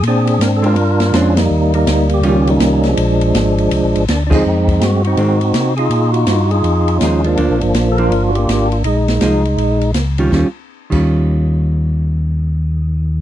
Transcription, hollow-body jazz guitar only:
X:1
M:4/4
L:1/8
Q:"Swing" 1/4=163
K:Bbdor
V:1 name="Hollow-body jazz guitar"
z3 [A,C=D] z2 [A,CD] z | z4 [E,G,DF]3 z | z6 z [F,CEA] | z4 [E,A,C] z3 |
z6 [F,A,E]2 | [F,B,=D] z2 [F,B,D] z4 | z2 [F,A,E] z4 [E,G,DF] | [E,G,DF] z2 [E,G,DF]4- [E,G,DF]- |
[E,G,DF]8 |]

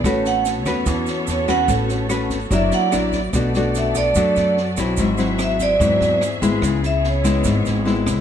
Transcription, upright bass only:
X:1
M:4/4
L:1/8
Q:1/4=146
K:Bdor
V:1 name="Upright bass" clef=bass
A,,,3 E,, E,, z E,,2 | A,,,3 G,,, F,,, z A,,,2 | B,,,4 F,, F,,2 B,,, | G,,,4 E,, E,,2 G,,, |
C,,4 G,,, G,,,2 C,, |]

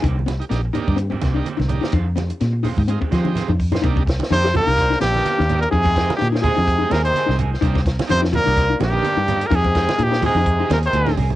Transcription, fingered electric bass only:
X:1
M:4/4
L:1/16
Q:"Swing 16ths" 1/4=127
K:Cm
V:1 name="Fingered electric bass" clef=bass
C,,4 B,,,2 z G,,3 C,,2 z C,,2 z | F,,4 B,,3 A,,2 z F,3 F,,3 | C,,4 F,,3 C,,3 B,,,2 z E,,3 | F,,4 B,,3 F,,3 E,,2 z C,,3 |
C,,4 F,,3 C,,3 B,,,2 z G,,3 | F,,4 B,,3 F,,3 E,,2 D,,2 C,,2 |]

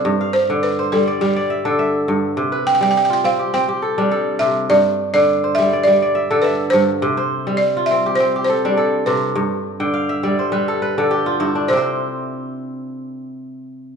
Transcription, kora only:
X:1
M:4/4
L:1/16
Q:1/4=103
K:Gmix
V:1 name="Kora"
z f3 z c2 d2 d e A e3 z | z B3 z F2 G2 G A D A3 z | z4 z c2 d2 d e A e3 z | z c3 z F2 G2 G A D A3 z |
z3 g f e d c B A B A G F E D- | D z12 z3 |]
V:2 name="Kora" clef=bass
G,,2 z D,2 z G,2 G,2 z D,2 z G,,2 | C,2 z G,2 z C2 C2 z G,2 z C,2 | G,,2 z D,2 z G,2 G,2 z D,2 z G,,2 | C,2 z G,2 z C2 C2 z G,2 z C,2 |
G,,2 z D,2 z G,2 G,2 z D,2 z G,,2 | [C,Cc]16 |]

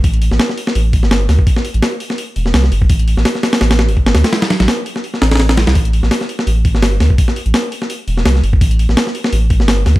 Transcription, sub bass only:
X:1
M:4/4
L:1/16
Q:"Swing 16ths" 1/4=168
K:Am
V:1 name="Sub bass" clef=bass
A,,,3 A,,, z4 A,,,3 G,,,3 D,, z | z3 A,,, z6 E,,,2 C,,2 G,,,2 | A,,,3 A,,, z4 A,,,3 G,,,3 D,, z | z3 A,,, z6 A,,,4- A,,, C,, |
A,,,3 A,,, z4 A,,,3 G,,,3 D,, z | z3 A,,, z6 E,,,2 C,,2 G,,,2 | A,,,3 A,,, z4 A,,,3 G,,,3 D,, z |]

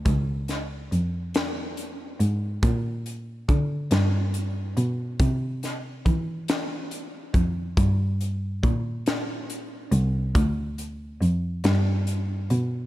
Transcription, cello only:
X:1
M:6/8
L:1/8
Q:3/8=47
K:Gdor
V:1 name="Cello" clef=bass
_D,,2 F,,3 _A,, | B,,2 D, G,,2 =B,, | C,2 E,3 F,, | G,,2 B,,3 C,, |
D,,2 F,, G,,2 =B,, |]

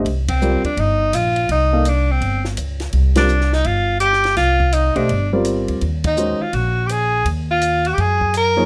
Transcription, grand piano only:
X:1
M:4/4
L:1/8
Q:"Swing" 1/4=166
K:Eblyd
V:1 name="Grand piano"
z2 [G,CFBd] z4 z | z [B,EAdf] z6 | z [G,CFBd] z6 | z3 [A,DGce] z [G,CFBd]3 |
z2 [E,_A,_D_Gc] z4 z | z6 z [F,B,E_A_d] |]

